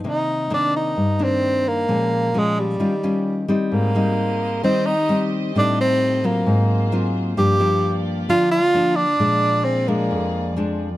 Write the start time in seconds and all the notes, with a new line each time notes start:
0.04 C3 D#3 A#3
0.08 D#4
0.50 D#3 A#3 D4
0.76 D#4
0.97 G2
1.19 D#3 A#3 D4
1.23 C4
1.68 A#3
1.88 A#2 F3 G#3 C#4
2.34 F3 G#3 C#4
2.59 G3
2.80 D#3 G3 C#4 F4
3.03 G3 C#4 F4
3.48 G3 C4 D#4
3.71 G#2 A#3 C4 G4 C5 D#5
3.95 G3 C4 D#4
4.63 D#3 G3 C4 D#4
4.86 D#4
5.09 G3 C4 D#4
5.55 A2 G3 C4 D4 D#4 A4
5.81 C4
6.24 F#3 A#3 C4 F4
6.46 G#2 A#3 F4 G#4 C5
6.92 F#3 C4 F4
7.37 G2 F3 A#3 D4 F4 G4 D5
7.60 F3 A#3 D4
8.29 D3 F3 A#3 D4 F4
8.51 F4
8.74 F3 A#3 D4
8.96 D4
9.19 A#2 F3 G#3 A#3 D4 G#4
9.64 C4
9.88 F3 G#3 A#3 D4
10.11 F2
10.57 F3 G#3 D4